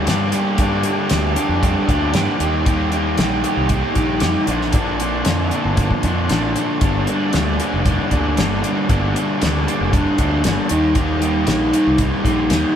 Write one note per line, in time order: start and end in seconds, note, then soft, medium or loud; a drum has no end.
0.04 0.30 G2 medium
0.04 0.32 G2 medium
0.04 0.31 D3 medium
0.04 0.32 G3 medium
0.04 0.32 A#3 medium
0.04 0.32 D4 medium
0.04 0.34 G4 medium
0.04 snare medium
0.04 closed hi-hat medium
0.31 0.57 G2 medium
0.31 0.57 D3 medium
0.31 0.59 G3 medium
0.31 0.59 A#3 medium
0.31 0.58 D4 medium
0.31 0.60 G4 medium
0.31 closed hi-hat medium
0.58 0.81 G2 medium
0.58 0.83 G2 medium
0.58 0.82 D3 medium
0.58 0.83 G3 medium
0.58 0.84 A#3 medium
0.58 0.83 D4 medium
0.58 0.85 G4 medium
0.58 kick medium
0.58 closed hi-hat medium
0.82 1.07 G2 medium
0.82 1.08 D3 medium
0.82 1.09 G3 medium
0.82 1.10 A#3 medium
0.82 1.09 D4 medium
0.82 1.11 G4 medium
0.82 closed hi-hat soft
1.08 1.35 D2 medium
1.08 1.33 G2 medium
1.08 1.34 D3 medium
1.08 1.35 G3 medium
1.08 1.36 A#3 medium
1.08 1.35 D4 medium
1.08 1.36 G4 medium
1.08 snare medium
1.08 closed hi-hat medium
1.34 1.59 G2 medium
1.34 1.60 D3 medium
1.34 1.60 G3 medium
1.34 1.61 A#3 medium
1.34 1.61 D4 medium
1.34 1.62 G4 medium
1.34 closed hi-hat medium
1.49 1.74 F2 medium
1.60 1.85 G2 medium
1.60 1.85 D3 medium
1.60 1.86 G3 medium
1.60 1.87 A#3 medium
1.60 1.87 D4 medium
1.60 1.87 G4 medium
1.60 kick medium
1.60 closed hi-hat medium
1.86 2.13 D2 medium
1.86 2.10 G2 medium
1.86 2.11 D3 medium
1.86 2.12 G3 medium
1.86 2.13 A#3 medium
1.86 2.13 D4 medium
1.86 2.13 G4 medium
1.86 kick medium
1.86 closed hi-hat medium
2.11 2.37 G2 medium
2.11 2.27 G2 medium
2.11 2.38 D3 medium
2.11 2.39 G3 medium
2.11 2.40 A#3 medium
2.11 2.39 D4 medium
2.11 2.39 G4 medium
2.11 snare medium
2.11 closed hi-hat medium
2.39 3.14 D#2 medium
2.39 2.63 D#3 medium
2.39 2.64 G3 medium
2.39 2.65 A#3 medium
2.39 2.65 D#4 medium
2.39 2.66 G4 medium
2.39 closed hi-hat medium
2.64 2.89 D#3 medium
2.64 2.90 G3 medium
2.64 2.91 A#3 medium
2.64 2.91 D#4 medium
2.64 2.91 G4 medium
2.64 kick medium
2.64 closed hi-hat medium
2.90 3.15 D#3 medium
2.90 3.17 G3 medium
2.90 3.18 A#3 medium
2.90 3.17 D#4 medium
2.90 3.18 G4 medium
2.90 closed hi-hat soft
3.17 3.43 A#1 medium
3.17 3.41 D#3 medium
3.17 3.42 G3 medium
3.17 3.43 A#3 medium
3.17 3.43 D#4 medium
3.17 3.43 G4 medium
3.17 snare medium
3.17 closed hi-hat medium
3.42 3.67 D#3 medium
3.42 3.67 G3 medium
3.42 3.69 A#3 medium
3.42 3.69 D#4 medium
3.42 3.69 G4 medium
3.42 closed hi-hat soft
3.57 3.82 C2 medium
3.68 3.93 D#3 medium
3.68 3.93 G3 medium
3.68 3.94 A#3 medium
3.68 3.94 D#4 medium
3.68 3.95 G4 medium
3.68 kick medium
3.68 closed hi-hat medium
3.94 4.21 A#1 medium
3.94 4.18 D#3 medium
3.94 4.18 G3 medium
3.94 4.20 A#3 medium
3.94 4.19 D#4 medium
3.94 4.20 G4 medium
3.94 kick medium
3.94 closed hi-hat soft
4.19 4.34 F2 medium
4.19 4.45 D#3 medium
4.19 4.45 G3 medium
4.19 4.48 A#3 medium
4.19 4.46 D#4 medium
4.19 4.46 G4 medium
4.19 snare medium
4.19 closed hi-hat medium
4.46 5.22 A#1 medium
4.46 4.71 A#2 medium
4.46 4.71 D3 medium
4.46 4.72 F3 medium
4.46 4.73 A#3 medium
4.46 4.74 D4 medium
4.46 closed hi-hat medium
4.62 snare soft
4.72 4.96 A#2 medium
4.72 4.97 D3 medium
4.72 4.98 F3 medium
4.72 4.99 A#3 medium
4.72 5.00 D4 medium
4.72 kick medium
4.72 closed hi-hat medium
4.97 5.23 A#2 medium
4.97 5.24 D3 medium
4.97 5.24 F3 medium
4.97 5.26 A#3 medium
4.97 5.25 D4 medium
4.97 closed hi-hat soft
5.24 5.51 F2 medium
5.24 5.50 A#2 medium
5.24 5.50 D3 medium
5.24 5.51 F3 medium
5.24 5.53 A#3 medium
5.24 5.53 D4 medium
5.24 snare medium
5.24 closed hi-hat medium
5.51 5.76 A#2 medium
5.51 5.77 D3 medium
5.51 5.78 F3 medium
5.51 5.79 A#3 medium
5.51 5.80 D4 medium
5.51 closed hi-hat medium
5.65 5.89 G1 medium
5.77 6.03 A#2 medium
5.77 6.04 D3 medium
5.77 6.05 F3 medium
5.77 6.06 A#3 medium
5.77 6.07 D4 medium
5.77 kick medium
5.77 closed hi-hat medium
5.91 kick medium
6.03 6.28 F2 medium
6.03 6.28 A#2 medium
6.03 6.29 D3 medium
6.03 6.29 F3 medium
6.03 6.31 A#3 medium
6.03 6.31 D4 medium
6.03 kick medium
6.03 closed hi-hat medium
6.29 6.55 A1 medium
6.29 6.54 A#2 medium
6.29 6.55 D3 medium
6.29 6.55 F3 medium
6.29 6.56 A#3 medium
6.29 6.57 D4 medium
6.29 snare loud
6.29 closed hi-hat medium
6.55 6.80 A#2 medium
6.55 6.80 D3 medium
6.55 6.80 F3 medium
6.55 6.83 A#3 medium
6.55 6.82 D4 medium
6.55 closed hi-hat medium
6.81 7.06 G1 medium
6.81 7.07 G2 medium
6.81 7.07 D3 medium
6.81 7.08 G3 medium
6.81 7.09 A#3 medium
6.81 7.09 D4 loud
6.81 kick medium
6.81 closed hi-hat medium
7.07 7.33 G2 medium
7.07 7.33 D3 medium
7.07 7.34 G3 medium
7.07 7.35 A#3 medium
7.07 7.35 D4 medium
7.07 closed hi-hat soft
7.33 7.58 D2 medium
7.33 7.58 G2 medium
7.33 7.58 D3 medium
7.33 7.60 G3 medium
7.33 7.60 A#3 medium
7.33 7.60 D4 medium
7.33 snare loud
7.33 closed hi-hat medium
7.59 7.83 G2 medium
7.59 7.84 D3 medium
7.59 7.85 G3 medium
7.59 7.86 A#3 medium
7.59 7.86 D4 medium
7.59 closed hi-hat medium
7.74 7.97 F1 medium
7.84 8.09 G2 medium
7.84 8.10 D3 medium
7.84 8.11 G3 medium
7.84 8.12 A#3 medium
7.84 8.11 D4 medium
7.84 kick medium
7.84 closed hi-hat medium
8.10 8.36 D2 medium
8.10 8.34 G2 medium
8.10 8.35 D3 medium
8.10 8.36 G3 medium
8.10 8.37 A#3 medium
8.10 8.37 D4 medium
8.10 kick medium
8.10 closed hi-hat medium
8.35 8.62 G1 medium
8.35 8.61 G2 medium
8.35 8.61 D3 medium
8.35 8.62 G3 medium
8.35 8.63 A#3 medium
8.35 8.63 D4 medium
8.35 snare loud
8.35 closed hi-hat medium
8.62 8.86 G2 medium
8.62 8.87 D3 medium
8.62 8.88 G3 medium
8.62 8.89 A#3 medium
8.62 8.88 D4 medium
8.62 closed hi-hat soft
8.88 9.14 G1 medium
8.88 9.12 G2 medium
8.88 9.13 D3 medium
8.88 9.15 G3 medium
8.88 9.15 A#3 medium
8.88 9.14 D4 medium
8.88 kick medium
8.88 closed hi-hat medium
9.14 9.39 G2 medium
9.14 9.40 D3 medium
9.14 9.41 G3 medium
9.14 9.42 A#3 medium
9.14 9.41 D4 medium
9.14 closed hi-hat medium
9.40 9.66 D2 medium
9.40 9.65 G2 medium
9.40 9.66 D3 medium
9.40 9.66 G3 medium
9.40 9.66 A#3 medium
9.40 9.67 D4 medium
9.40 snare loud
9.40 closed hi-hat medium
9.66 9.91 G2 medium
9.66 9.92 D3 medium
9.66 9.91 G3 medium
9.66 9.92 A#3 medium
9.66 9.93 D4 medium
9.66 closed hi-hat medium
9.81 10.04 F1 medium
9.92 10.17 G2 medium
9.92 10.18 D3 medium
9.92 10.18 G3 medium
9.92 10.19 A#3 medium
9.92 10.20 D4 medium
9.92 kick loud
9.92 closed hi-hat medium
10.18 10.43 D2 medium
10.18 10.42 G2 medium
10.18 10.43 D3 medium
10.18 10.43 G3 medium
10.18 10.44 A#3 medium
10.18 10.45 D4 medium
10.18 kick medium
10.18 closed hi-hat medium
10.43 10.57 G1 medium
10.43 10.68 G2 medium
10.43 10.69 D3 medium
10.43 10.69 G3 medium
10.43 10.69 A#3 medium
10.43 10.69 D4 medium
10.43 snare loud
10.43 closed hi-hat medium
10.69 11.44 D#2 medium
10.69 10.93 D#3 medium
10.69 10.94 G3 medium
10.69 10.95 A#3 medium
10.69 10.95 D#4 medium
10.69 closed hi-hat medium
10.94 11.18 D#3 medium
10.94 11.20 G3 medium
10.94 11.20 A#3 medium
10.94 11.20 D#4 medium
10.94 kick medium
10.94 closed hi-hat medium
11.20 11.44 D#3 medium
11.20 11.45 G3 medium
11.20 11.46 A#3 medium
11.20 11.46 D#4 medium
11.20 closed hi-hat medium
11.45 11.72 A#1 medium
11.45 11.71 D#3 medium
11.45 11.71 G3 medium
11.45 11.72 A#3 medium
11.45 11.72 D#4 medium
11.45 snare loud
11.45 closed hi-hat medium
11.72 11.97 D#3 medium
11.72 11.98 G3 medium
11.72 11.99 A#3 medium
11.72 11.99 D#4 medium
11.72 closed hi-hat medium
11.87 12.11 C2 medium
11.98 12.23 D#3 medium
11.98 12.24 G3 medium
11.98 12.24 A#3 medium
11.98 12.25 D#4 medium
11.98 kick medium
11.98 closed hi-hat medium
12.24 12.49 A#1 medium
12.24 12.48 D#3 medium
12.24 12.49 G3 medium
12.24 12.49 A#3 medium
12.24 12.50 D#4 medium
12.24 kick medium
12.24 closed hi-hat medium
12.49 12.63 D#2 medium
12.49 12.74 D#3 medium
12.49 12.74 G3 medium
12.49 12.75 A#3 medium
12.49 12.75 D#4 medium
12.49 snare loud
12.49 closed hi-hat medium